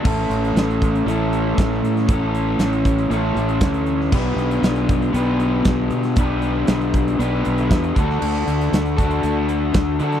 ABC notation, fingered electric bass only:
X:1
M:4/4
L:1/8
Q:1/4=117
K:Amix
V:1 name="Fingered electric bass" clef=bass
A,,, A,,, A,,,2 A,,,2 A,,, A,, | A,,,2 A,,,2 A,,, A,,, D,,2 | B,,, B,,, B,,,2 B,,,2 B,,, B,, | B,,,2 B,,,2 B,,, B,,, E,, D,, |
D,, D,, D,,2 D,,2 D,, D, |]